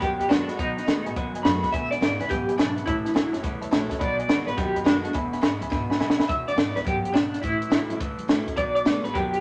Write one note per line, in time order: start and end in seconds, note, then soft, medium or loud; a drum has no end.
0.00 0.14 D#2 loud
0.00 0.56 F#2 medium
0.00 0.29 B2 medium
0.00 0.31 F#3 medium
0.00 0.28 G4 loud
0.00 0.12 B4 medium
0.00 0.12 D#5 medium
0.00 0.12 F#5 medium
0.00 kick loud
0.00 closed hi-hat medium
0.19 0.26 D#2 medium
0.19 0.26 B4 medium
0.19 0.26 D#5 medium
0.19 0.26 F#5 medium
0.19 closed hi-hat medium
0.29 0.48 F#2 medium
0.29 0.57 B2 medium
0.29 0.47 D#3 medium
0.29 0.57 G#3 medium
0.29 0.47 A3 medium
0.29 0.48 B3 medium
0.29 0.57 D4 loud
0.29 0.47 F#4 medium
0.29 0.41 B4 medium
0.29 0.41 D#5 medium
0.29 0.41 F#5 loud
0.29 snare loud
0.29 closed hi-hat medium
0.48 0.59 B3 medium
0.48 0.58 F#4 medium
0.48 0.54 B4 medium
0.48 0.55 D#5 medium
0.48 0.54 F#5 medium
0.48 snare soft
0.48 closed hi-hat medium
0.57 0.77 B1 loud
0.57 0.86 B2 medium
0.57 1.14 B2 medium
0.57 0.87 F#3 medium
0.57 1.13 D#4 loud
0.57 0.70 B4 loud
0.57 0.70 D#5 medium
0.57 0.70 F#5 loud
0.57 kick loud
0.57 closed hi-hat medium
0.77 0.83 B4 medium
0.77 0.83 D#5 medium
0.77 0.83 F#5 medium
0.77 snare soft
0.77 closed hi-hat medium
0.86 0.99 D#2 medium
0.86 1.14 B2 medium
0.86 1.04 D#3 medium
0.86 1.14 G#3 loud
0.86 1.05 A3 medium
0.86 1.05 B3 medium
0.86 1.05 F#4 medium
0.86 0.98 B4 medium
0.86 0.98 D#5 medium
0.86 0.98 F#5 medium
0.86 snare loud
0.86 closed hi-hat medium
1.05 1.12 A1 medium
1.05 1.16 B3 soft
1.05 1.16 F#4 medium
1.05 1.11 B4 medium
1.05 1.11 D#5 medium
1.05 1.12 G#5 loud
1.05 closed hi-hat medium
1.16 1.28 D#2 loud
1.16 1.71 F#2 medium
1.16 1.43 B2 medium
1.16 1.44 F#3 medium
1.16 1.27 B4 medium
1.16 1.27 D#5 medium
1.16 1.27 F#5 loud
1.16 kick loud
1.16 closed hi-hat medium
1.33 1.40 D#2 medium
1.33 1.40 B4 medium
1.33 1.41 D#5 medium
1.33 1.41 G#5 loud
1.33 closed hi-hat medium
1.43 1.63 F#2 loud
1.43 1.71 B2 medium
1.43 1.62 D#3 medium
1.43 1.71 G#3 medium
1.43 1.63 A3 loud
1.43 1.63 B3 medium
1.43 1.61 F#4 medium
1.43 1.55 B4 medium
1.43 1.55 D#5 medium
1.43 1.55 A5 loud
1.43 1.71 B5 medium
1.43 snare loud
1.43 closed hi-hat medium
1.62 1.73 B3 soft
1.62 1.72 F#4 medium
1.62 1.69 B4 medium
1.62 1.69 D#5 medium
1.62 1.69 F#5 loud
1.62 kick medium
1.62 snare soft
1.62 closed hi-hat medium
1.72 1.92 E1 loud
1.72 2.27 E2 medium
1.72 2.00 E2 medium
1.72 2.01 B2 medium
1.72 1.84 B4 loud
1.72 1.90 E5 medium
1.72 1.84 E5 medium
1.72 1.84 G#5 loud
1.72 kick loud
1.72 closed hi-hat medium
1.91 1.98 B4 medium
1.91 2.19 D5 medium
1.91 1.98 E5 medium
1.91 1.98 G#5 medium
1.91 snare soft
1.91 closed hi-hat medium
2.00 2.13 G#1 medium
2.00 2.28 E2 medium
2.00 2.28 C#3 medium
2.00 2.18 E3 medium
2.00 2.19 G#3 medium
2.00 2.19 B3 medium
2.00 2.18 E4 medium
2.00 2.12 B4 medium
2.00 2.13 E5 medium
2.00 2.13 G#5 medium
2.00 snare loud
2.00 closed hi-hat medium
2.19 2.26 C#2 loud
2.19 2.30 B3 medium
2.19 2.29 E4 medium
2.19 2.26 B4 medium
2.19 2.30 B4 medium
2.19 2.26 E5 medium
2.19 2.26 G#5 medium
2.19 snare soft
2.19 closed hi-hat medium
2.29 2.42 G#1 loud
2.29 2.57 E2 medium
2.29 2.57 F#2 loud
2.29 2.58 B2 medium
2.29 2.57 G4 medium
2.29 2.41 B4 medium
2.29 2.41 E5 medium
2.29 2.41 G#5 medium
2.29 kick loud
2.29 snare soft
2.29 closed hi-hat medium
2.48 2.55 G#1 medium
2.48 2.54 B4 medium
2.48 2.54 E5 medium
2.48 2.54 G#5 medium
2.48 closed hi-hat medium
2.58 2.77 B1 loud
2.58 2.85 E2 medium
2.58 2.85 G#2 medium
2.58 2.85 C#3 medium
2.58 2.85 D4 medium
2.58 2.69 B4 medium
2.58 2.69 E5 medium
2.58 2.69 G#5 loud
2.58 snare loud
2.58 closed hi-hat medium
2.76 2.82 B4 medium
2.76 2.82 E5 medium
2.76 2.82 F#5 loud
2.76 closed hi-hat medium
2.86 3.06 A1 loud
2.86 3.41 A2 medium
2.86 3.14 A2 medium
2.86 3.15 E3 medium
2.86 3.41 E4 loud
2.86 2.98 C#5 loud
2.86 2.98 E5 loud
2.86 2.98 A5 loud
2.86 kick loud
2.86 closed hi-hat medium
3.05 3.11 C#5 medium
3.05 3.11 E5 medium
3.05 3.11 A5 medium
3.05 snare soft
3.05 closed hi-hat medium
3.14 3.27 C#2 medium
3.14 3.42 A2 medium
3.14 3.32 E3 medium
3.14 3.42 F#3 medium
3.14 3.33 A3 medium
3.14 3.33 C#4 medium
3.14 3.32 E4 medium
3.14 3.26 C#5 medium
3.14 3.26 E5 medium
3.14 3.26 G#5 medium
3.14 snare loud
3.14 closed hi-hat medium
3.33 3.39 F#1 medium
3.33 3.44 C#4 medium
3.33 3.43 E4 medium
3.33 3.39 C#5 medium
3.33 3.39 E5 medium
3.33 3.39 A5 medium
3.33 snare soft
3.33 closed hi-hat medium
3.42 3.56 C#2 loud
3.42 3.99 E2 loud
3.42 3.70 A2 medium
3.42 3.71 E3 medium
3.42 3.54 C#5 medium
3.42 3.54 E5 medium
3.42 3.54 F#5 loud
3.42 kick loud
3.42 closed hi-hat medium
3.61 3.68 C#2 medium
3.61 3.68 C#5 medium
3.61 3.68 E5 medium
3.61 3.68 A5 loud
3.61 closed hi-hat medium
3.71 3.90 A#1 medium
3.71 3.98 A2 medium
3.71 3.89 E3 medium
3.71 3.98 F#3 medium
3.71 3.90 A3 loud
3.71 3.90 C#4 medium
3.71 3.88 E4 medium
3.71 3.83 C#5 loud
3.71 3.83 E5 loud
3.71 3.83 A5 loud
3.71 snare loud
3.71 closed hi-hat medium
3.89 4.00 C#4 medium
3.89 4.00 E4 medium
3.89 3.96 C#5 loud
3.89 3.96 E5 loud
3.89 3.96 A5 loud
3.89 kick medium
3.89 snare soft
3.89 closed hi-hat medium
3.99 4.20 B1 loud
3.99 4.28 B2 medium
3.99 4.56 B2 medium
3.99 4.29 F#3 medium
3.99 4.16 D5 loud
3.99 4.11 D#5 loud
3.99 4.11 F#5 loud
3.99 4.11 B5 loud
3.99 kick loud
3.99 closed hi-hat medium
4.18 4.46 D5 medium
4.18 4.25 D#5 medium
4.18 4.25 F#5 medium
4.18 4.25 G#5 medium
4.18 closed hi-hat medium
4.28 4.40 D#2 medium
4.28 4.55 B2 medium
4.28 4.46 D#3 medium
4.28 4.56 G#3 loud
4.28 4.47 A3 medium
4.28 4.47 B3 medium
4.28 4.46 F#4 medium
4.28 4.40 D#5 medium
4.28 4.40 F#5 medium
4.28 4.40 B5 medium
4.28 snare loud
4.28 closed hi-hat medium
4.46 4.53 A1 medium
4.46 4.58 B3 soft
4.46 4.57 F#4 medium
4.46 4.57 B4 medium
4.46 4.53 D#5 medium
4.46 4.53 F#5 medium
4.46 4.53 B5 medium
4.46 snare soft
4.46 closed hi-hat medium
4.57 4.70 D#2 loud
4.57 5.13 F#2 loud
4.57 4.85 B2 medium
4.57 4.86 F#3 medium
4.57 4.85 G4 loud
4.57 4.68 D#5 medium
4.57 4.68 F#5 medium
4.57 4.68 B5 medium
4.57 kick loud
4.57 snare soft
4.57 closed hi-hat medium
4.75 4.82 D#2 medium
4.75 4.82 D#5 medium
4.75 4.82 F#5 medium
4.75 4.82 B5 medium
4.75 closed hi-hat medium
4.84 5.04 F#2 loud
4.84 5.13 B2 medium
4.84 5.03 D#3 medium
4.84 5.13 G#3 loud
4.84 5.03 A3 medium
4.84 5.03 B3 medium
4.84 5.14 D4 medium
4.84 5.02 F#4 medium
4.84 4.97 D#5 medium
4.84 4.97 F#5 medium
4.84 4.97 B5 loud
4.84 snare loud
4.84 closed hi-hat medium
5.04 5.15 B3 soft
5.04 5.14 F#4 medium
5.04 5.11 D#5 medium
5.04 5.10 F#5 medium
5.04 5.11 A5 loud
5.04 closed hi-hat medium
5.13 5.33 E1 loud
5.13 5.69 E2 loud
5.13 5.41 E2 medium
5.13 5.43 B2 loud
5.13 5.26 E5 loud
5.13 5.25 G#5 loud
5.13 5.25 B5 loud
5.13 kick loud
5.13 closed hi-hat medium
5.33 5.39 E5 medium
5.33 5.39 G#5 medium
5.33 5.39 B5 loud
5.33 snare soft
5.33 closed hi-hat medium
5.41 5.55 G#1 medium
5.41 5.69 E2 medium
5.41 5.70 C#3 medium
5.41 5.60 E3 medium
5.41 5.60 G#3 medium
5.41 5.60 B3 medium
5.41 5.58 E4 medium
5.41 5.54 E5 medium
5.41 5.54 G#5 medium
5.41 5.54 B5 loud
5.41 snare loud
5.41 closed hi-hat medium
5.59 5.68 C#2 loud
5.59 5.71 B3 soft
5.59 5.70 E4 medium
5.59 5.68 E5 medium
5.59 5.68 G#5 medium
5.59 5.68 B5 loud
5.59 closed hi-hat medium
5.70 5.84 G#1 loud
5.70 5.98 E2 medium
5.70 6.26 B2 loud
5.70 6.00 B2 medium
5.70 5.83 E5 medium
5.70 5.83 G#5 medium
5.70 5.83 B5 loud
5.70 kick loud
5.70 snare medium
5.89 5.96 G#1 medium
5.89 5.96 E5 medium
5.89 5.96 G#5 medium
5.89 5.96 B5 loud
5.89 snare medium
5.99 6.18 B1 medium
5.99 6.26 E2 medium
5.99 6.27 C#3 medium
5.99 6.17 E3 medium
5.99 6.18 G#3 medium
5.99 6.18 B3 medium
5.99 6.16 E4 medium
5.99 6.11 E5 loud
5.99 6.11 G#5 medium
5.99 6.11 B5 loud
5.99 snare medium
6.10 snare loud
6.17 6.29 B3 medium
6.17 6.28 E4 medium
6.17 6.25 E5 loud
6.17 6.25 G#5 loud
6.17 6.25 B5 loud
6.17 snare medium
6.28 6.48 E1 loud
6.28 6.83 E2 medium
6.28 6.55 E2 medium
6.28 6.57 B2 medium
6.28 6.46 E5 medium
6.28 kick loud
6.28 closed hi-hat medium
6.48 6.75 D5 medium
6.48 snare soft
6.48 closed hi-hat medium
6.56 6.69 G#1 medium
6.56 6.83 E2 medium
6.56 6.84 C#3 medium
6.56 6.75 E3 medium
6.56 6.75 G#3 medium
6.56 6.75 B3 medium
6.56 6.74 E4 medium
6.56 snare loud
6.56 closed hi-hat medium
6.74 6.81 C#2 medium
6.74 6.86 B3 soft
6.74 6.85 E4 medium
6.74 6.86 B4 medium
6.74 snare soft
6.74 closed hi-hat medium
6.85 6.98 G#1 medium
6.85 7.13 E2 medium
6.85 7.13 F#2 medium
6.85 7.14 B2 medium
6.85 7.14 G4 medium
6.85 kick loud
6.85 closed hi-hat medium
7.04 7.10 G#1 medium
7.04 closed hi-hat medium
7.13 7.33 B1 medium
7.13 7.41 E2 medium
7.13 7.41 G#2 medium
7.13 7.41 C#3 medium
7.13 7.41 D4 medium
7.13 snare loud
7.13 closed hi-hat medium
7.34 snare soft
7.34 closed hi-hat medium
7.42 7.62 A1 loud
7.42 7.98 A2 medium
7.42 7.71 A2 medium
7.42 7.71 E3 medium
7.42 7.98 E4 loud
7.42 kick loud
7.42 closed hi-hat medium
7.62 closed hi-hat medium
7.70 7.83 C#2 medium
7.70 7.98 A2 medium
7.70 7.88 E3 medium
7.70 7.98 F#3 medium
7.70 7.89 A3 medium
7.70 7.90 C#4 medium
7.70 7.88 E4 medium
7.70 snare loud
7.70 closed hi-hat medium
7.89 7.96 F#1 medium
7.89 8.00 C#4 soft
7.89 7.99 E4 medium
7.89 closed hi-hat medium
8.00 8.12 C#2 loud
8.00 8.55 E2 loud
8.00 8.27 A2 medium
8.00 8.29 E3 loud
8.00 kick loud
8.00 closed hi-hat medium
8.18 8.25 C#2 medium
8.18 closed hi-hat medium
8.28 8.46 A1 medium
8.28 8.55 A2 medium
8.28 8.46 E3 medium
8.28 8.56 F#3 medium
8.28 8.46 A3 medium
8.28 8.47 C#4 medium
8.28 8.45 E4 medium
8.28 snare loud
8.28 closed hi-hat medium
8.46 8.57 C#4 medium
8.46 8.56 E4 medium
8.46 kick medium
8.46 closed hi-hat medium
8.57 8.76 B1 loud
8.57 9.12 B2 medium
8.57 8.84 B2 medium
8.57 8.86 F#3 medium
8.57 8.74 D5 loud
8.57 kick loud
8.57 closed hi-hat medium
8.75 9.03 D5 medium
8.75 closed hi-hat medium
8.85 8.97 D#2 medium
8.85 9.12 B2 medium
8.85 9.03 D#3 medium
8.85 9.13 G#3 loud
8.85 9.03 A3 medium
8.85 9.04 B3 medium
8.85 9.03 F#4 medium
8.85 snare loud
8.85 closed hi-hat medium
9.03 9.10 A1 medium
9.03 9.15 B3 soft
9.03 9.14 F#4 medium
9.03 9.14 B4 loud
9.03 snare soft
9.03 closed hi-hat medium
9.14 9.27 D#2 loud
9.14 9.40 F#2 loud
9.14 9.40 B2 medium
9.14 9.40 F#3 loud
9.14 9.40 G4 medium
9.14 kick loud
9.14 closed hi-hat medium
9.33 9.39 D#2 medium
9.33 closed hi-hat medium